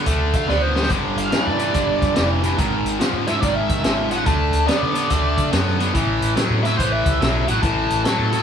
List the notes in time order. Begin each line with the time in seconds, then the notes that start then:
0.06 D2 D3 A3, kick, closed hi-hat
0.33 D3 F5, kick, closed hi-hat
0.48 D2 D3 B3 D5, snare
0.62 C5
0.76 D3 B3, snare
0.83 snare
0.89 G1 G2 D3, kick, closed hi-hat
1.18 G1 F5, closed hi-hat
1.32 G2 E3, snare, closed hi-hat
1.47 G2 D5
1.58 G2 E3, closed hi-hat
1.74 G1 G2 D3, kick, closed hi-hat
2.02 G2, kick, closed hi-hat
2.15 F1 G2 E3, snare, closed hi-hat
2.43 G2 E3, closed hi-hat
2.58 G#1 G#2 D#3, kick, closed hi-hat
2.85 G#1, closed hi-hat
3.00 G#2 F3, snare, closed hi-hat
3.13 G#2
3.27 G#2 F3 E5, closed hi-hat
3.41 G#1 G#2 D#3 D5, kick, closed hi-hat
3.55 E5
3.69 G#2, kick, closed hi-hat
3.84 G#1 G#2 F3, snare, closed hi-hat
4.11 G#2 F3 F#5, closed hi-hat
4.26 D2 D3 A3 A5, kick, closed hi-hat
4.53 D2, closed hi-hat
4.67 D3 B3 D5, snare, closed hi-hat
4.83 D3
4.94 D3 B3, closed hi-hat
5.10 D2 D3 A3, kick, closed hi-hat
5.38 D3, kick, closed hi-hat
5.52 F#2 D3 B3, snare, closed hi-hat
5.68 snare
5.78 D3 B3, snare, closed hi-hat
5.94 A1 A2 E3, kick, closed hi-hat
6.21 A1, closed hi-hat
6.36 A2 F#3, snare, closed hi-hat
6.50 A2
6.63 A2 F#3 E5, closed hi-hat
6.76 A1 A2 E3 C5, kick, closed hi-hat
6.92 E5
7.06 C#2, kick, closed hi-hat
7.20 B1 A2 F#3, snare, closed hi-hat
7.47 A1 A2 F#3 F#5, closed hi-hat
7.62 A1 A2 E3 A5, kick, closed hi-hat
7.90 A1, closed hi-hat
8.04 A2 F#3 A4, snare, closed hi-hat
8.19 A2
8.31 A2 F#3, closed hi-hat